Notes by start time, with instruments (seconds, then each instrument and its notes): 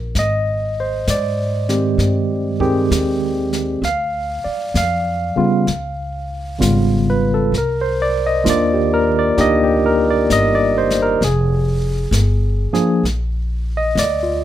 Already playing: upright bass A#1
0.15 upright bass G#1, tine electric piano D#5, brush sweep, snare
0.80 tine electric piano C5
1.07 upright bass G#2, tine electric piano D5, snare, hi-hat pedal
1.69 tine electric piano D#3 G#3 C4 G4, snare
1.98 upright bass G2, brush sweep, snare
2.60 tine electric piano D#3 C4 G4 G#4, kick
2.91 upright bass D#2, snare, hi-hat pedal
3.53 snare
3.82 upright bass D2, tine electric piano F5, brush sweep, snare
4.44 tine electric piano D5, muted upright bass stroke
4.74 upright bass F2, tine electric piano F5, snare, hi-hat pedal
5.36 tine electric piano C#3 G3 B3 F4, muted upright bass stroke
5.67 upright bass C#2, brush sweep, snare
6.59 upright bass G#1, tine electric piano C#3 G3 B3 F4, snare, hi-hat pedal
7.10 tine electric piano B4
7.34 tine electric piano A4
7.52 upright bass C2, brush sweep, snare
7.58 tine electric piano A#4
7.81 tine electric piano C5
8.02 tine electric piano D5
8.26 tine electric piano D#5
8.44 upright bass D#2, tine electric piano D#3 A#3 D4 F4, snare, hi-hat pedal
8.50 tine electric piano D5
8.74 tine electric piano G4
8.94 tine electric piano A#4
9.19 tine electric piano D5
9.37 upright bass D2, tine electric piano A#3 D4 D#4 G4 D#5, brush sweep, snare
9.64 tine electric piano G4
9.86 tine electric piano A#4
10.10 tine electric piano D5
10.30 upright bass G1, tine electric piano D#5, snare, hi-hat pedal
10.55 tine electric piano D5
10.78 tine electric piano C5
10.90 snare
11.02 tine electric piano A#4
11.21 upright bass F1, tine electric piano G#4, brush sweep, snare
12.11 upright bass G1, snare, hi-hat pedal
12.73 tine electric piano F3 A#3 D4 G#4, muted upright bass stroke, snare
13.03 upright bass A#1, brush sweep, snare
13.77 tine electric piano D#5
13.95 upright bass D2, tine electric piano D5, snare, hi-hat pedal
14.23 tine electric piano F4